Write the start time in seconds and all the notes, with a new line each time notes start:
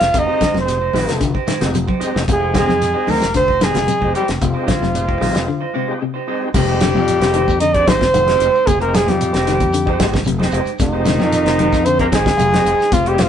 Already playing: F4 F5
0.01 F1, snare, closed hi-hat, shekere
0.14 F1 C3, kick, closed hi-hat, high conga, low conga, shekere
0.18 D#4 D#5
0.26 G#3 C4 D#4 G4 C5
0.41 D3 G#3 D#4 G4 C5, kick, snare, closed hi-hat, high conga, shekere
0.54 F1 C3 C4, snare, high conga, shekere
0.60 C5
0.65 G#3 C4 D#4 G4, snare, closed hi-hat, shekere
0.81 D#4 G4 C5
0.93 A#1 D#3 G#3 C4 D#4 G4 C5, snare, open hi-hat, high conga, shekere
1.09 F1, snare, closed hi-hat, shekere
1.20 D3, kick, snare, closed hi-hat, high conga, shekere
1.34 D#4 G4 C5, kick
1.47 D#3 G#3 D#4 G4 C5, snare, closed hi-hat, high conga, shekere
1.60 F1 G#3 C4 D#4 G4, snare, closed hi-hat, low conga, shekere
1.74 C3, closed hi-hat, high conga, shekere
1.87 D#4 G4 C5, kick, high conga
2.00 G#3 C4 D#4 G4 C5, muted fingered electric bass stroke, closed hi-hat, shekere
2.16 F1, snare, shekere
2.28 F1 C3 G#3 G#4, kick, closed hi-hat, high conga, low conga, shekere
2.40 D#4 G4 C5
2.53 D3 G#3 C4 D#4 G4 G#4 C5, kick, snare, closed hi-hat, high conga, shekere
2.59 G#3 G#4
2.67 F2 C3, snare, high conga, shekere
2.82 snare, closed hi-hat, high conga, shekere
2.94 G#3 C4 D#4 G4 C5
3.07 D2 D#3 G#3 A#3 D#4 G4 A#4 C5, open hi-hat, high conga, shekere
3.21 F1, snare, closed hi-hat, shekere
3.34 D3 C4 C5, kick, snare, closed hi-hat, high conga, shekere
3.48 D#4 G4 C5, kick
3.60 D#3 G#3 C4 D#4 G4 G#4 C5, snare, closed hi-hat, high conga, shekere
3.74 F1, snare, closed hi-hat, low conga, shekere
3.87 C3, closed hi-hat, high conga, shekere
4.01 F1 G#3 C4 D#4 G4 C5, kick, high conga
4.14 G3 G#3 D#4 G4 C5, closed hi-hat, shekere
4.28 F1, snare, closed hi-hat, shekere
4.41 F1 C3 F3 F4, kick, closed hi-hat, high conga, low conga, shekere
4.54 G#3 C4 D#4 G4 C5
4.66 D3 G#3 D#4 G4 C5, kick, snare, closed hi-hat, high conga, shekere
4.81 F1 C3, snare, high conga, shekere
4.94 G#3 C4 D#4 G4, closed hi-hat, high conga, shekere
5.07 D#4 G4 C5, kick
5.21 A#1 D#3 G#3 C4 D#4 G4 C5, open hi-hat, high conga, shekere
5.35 F1, snare, closed hi-hat, low conga, shekere
5.48 D3
5.61 D#4 C5, muted clean electric guitar stroke
5.74 C3 G#3 D#4 G4 C5
5.88 G#3 C4 D#4 G4
6.02 C3
6.14 D#4 G4 C5
6.27 G#3 C4 D#4 G4 C5
6.54 F1 C3 G3 G#3 D#4 G4 C5, kick, snare, crash, high conga, low conga, shekere
6.67 G#3 C4 D#4 G4 C5
6.81 D3 G#3 D#4 G4 C5, snare, closed hi-hat, high conga, shekere
6.94 F2 C3, high conga, shekere
7.08 closed hi-hat, shekere
7.20 F1 G#3 C4 D#4 G4 C5, snare, closed hi-hat
7.34 D#3 G#3 D#4 G4 C5, closed hi-hat, shekere
7.47 F2, kick, low conga, shekere
7.59 D3 D#4 D#5, closed hi-hat, high conga, shekere
7.72 G#3 C4 D4 D#4 G4 C5 D5, kick, closed hi-hat
7.76 D#4
7.86 G#1 D#3 G#3 C4 D#4 C5, kick, snare, closed hi-hat, high conga, shekere
8.01 kick, snare, low conga, shekere
8.13 F1 D#3, closed hi-hat, high conga, shekere
8.27 G#3 C4 D#4 F4 G4 C5, snare, closed hi-hat
8.40 F1 G#3 D#4 G4 C5, closed hi-hat, shekere
8.55 shekere
8.66 F1 C3 G#3 G#4, kick, closed hi-hat, high conga, low conga, shekere
8.80 G#3 A#3 C4 D#4 G4 A#4 C5, closed hi-hat
8.94 G#3 D#4 G4 G#4 C5, snare, closed hi-hat, high conga, shekere
9.06 F2 C3 G3 G4, snare, closed hi-hat, high conga, shekere
9.21 closed hi-hat, high conga, shekere
9.32 F1 G#3 C4 D#4 G4 C5, snare, closed hi-hat
9.47 D#3 G#3 D#4 G4 C5, snare, closed hi-hat, shekere
9.60 F2, kick, closed hi-hat, low conga, shekere
9.73 D3, closed hi-hat, high conga, shekere
9.86 G#3 C4 D#4 G4 C5, kick
10.00 G#1 G#3 D#4 G4 C5, muted clean electric guitar stroke, kick, snare, closed hi-hat, high conga, shekere
10.13 kick, snare, low conga, shekere
10.24 F1 C3, closed hi-hat, high conga, shekere
10.38 G#3 C4 D#4 G4 C5, snare, high conga
10.51 F1 G#3 D#4 G4 C5, closed hi-hat, shekere
10.66 closed hi-hat, shekere
10.79 F1 C3 D#3 D#4, kick, snare, closed hi-hat, high conga, low conga, shekere
10.92 G#3 C4 D#4 G4 C5
11.05 D3 G#3 D#4 G4 C5, snare, closed hi-hat, high conga, shekere
11.19 F2 C3, snare, high conga, shekere
11.32 snare, closed hi-hat, high conga, shekere
11.45 F1 G#3 C4 D#4 G4 C5, snare, closed hi-hat
11.58 D#3 G#3 D#4 G4 C5, closed hi-hat, high conga, shekere
11.72 F2, kick, snare, shekere
11.84 D3 C4 C5, closed hi-hat, high conga, shekere
11.99 G#3 A#3 C4 D#4 G4 A#4 C5, kick, closed hi-hat
12.12 G#1 D#3 G#3 D#4 G4 G#4 C5, kick, snare, closed hi-hat, high conga, shekere
12.26 kick, snare, low conga, shekere
12.37 F1 C3, closed hi-hat, high conga, shekere
12.51 G#3 C4 D#4 G4 C5, snare, closed hi-hat, high conga
12.65 F1 G#3 D#4 G4 C5, closed hi-hat, shekere
12.79 muted fingered electric bass stroke, snare, shekere
12.91 F1 C3 F3 F4, kick, snare, closed hi-hat, high conga, low conga, shekere
13.05 G3 G#3 C4 D#4 G4 G#4 C5, closed hi-hat
13.18 F3 G#3 G4 C5, muted clean electric guitar stroke, snare, closed hi-hat, high conga, shekere
13.22 F4